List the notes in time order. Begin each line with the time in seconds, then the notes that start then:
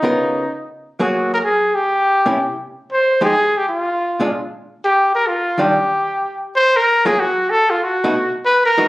Already playing: D#4
0.02 C#3 B3 F4 A#4
0.99 F#3 A#3 F#4 G#4
1.34 A#4
1.44 G#4
1.75 G4
2.26 C3 A#3 C#4 E4
2.92 C5
3.21 F3 G#3 D#4 G4 G#4
3.57 G4
3.69 F4
4.20 A#2 G#3 D4 F4
4.84 G4
5.15 A#4
5.27 F4
5.58 D#3 G3 D4 F4 G4
6.56 C5
6.76 A#4
7.05 F#3 A#3 F4 G#4
7.20 F#4
7.50 A4
7.70 F4
7.84 F#4
8.04 B2 A3 D#4 F#4
8.46 B4
8.66 A#4
8.78 E3 G#3 D#4 F#4